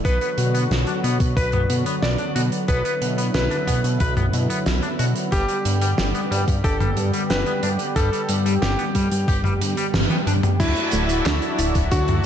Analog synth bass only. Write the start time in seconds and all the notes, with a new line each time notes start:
0.05 B1
0.38 B2
0.71 B1
1.04 B2
1.20 B2
1.37 B1
1.70 B2
2.02 B1
2.36 B2
2.69 B1
3.02 B2
3.34 B1
3.67 B2
3.84 B2
4.00 B1
4.33 B2
4.66 B1
4.99 B2
5.32 G1
5.65 G2
5.98 G1
6.31 G2
6.48 G2
6.64 G1
6.97 G2
7.30 G1
7.63 G2
7.96 G1
8.29 G2
8.62 G1
8.95 G2
9.12 G2
9.28 G1
9.61 G2
9.94 G1
10.27 G2
10.60 D2
10.93 D1
11.26 D2
11.59 D1
11.75 D1
11.92 D2